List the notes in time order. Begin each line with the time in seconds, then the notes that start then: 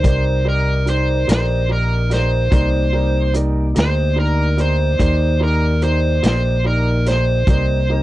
Already playing: D#4 A#4 D5
0.03 C2 D#4 G4 A#4 D5, kick, closed hi-hat
0.08 C5
0.45 D#4 G4 A#4 D5
0.49 A#4
0.86 D#4 G4 A#4 C5 D5, closed hi-hat
1.27 A#1 D#4 G4 A#4 C5 D5, closed hi-hat
1.32 snare
1.69 D#4 G4 A#4 D5
2.10 D#4 G4 A#4 C5 D5, closed hi-hat
2.14 snare
2.51 C2 A#3 D#4 G4 A#4 C5 D5, kick, closed hi-hat
2.93 D#4 G4 A#4 D5
3.33 D#4 G4 A#4 D5, closed hi-hat
3.75 D2 D#4 G4 A#4 D5, snare, closed hi-hat
3.79 C5
4.16 D#4 G4 A#4 D5
4.57 D#4 G4 A#4 D5, closed hi-hat
4.61 C5
4.99 D#2 D#4 G4 A#4 C5 D5, kick, closed hi-hat
5.40 D#4 G4 A#4 D5
5.82 D#4 G4 A#4 C5 D5, closed hi-hat
6.22 A#1 D#4 G4 A#4 C5 D5, snare, closed hi-hat
6.64 D#4 G4 A#4 D5
7.06 D#4 G4 A#4 C5, snare, closed hi-hat
7.47 C2 A#3 C4 D#4 G4 A#4 C5 D5, kick, closed hi-hat
7.89 D#4 G4 A#4 D#5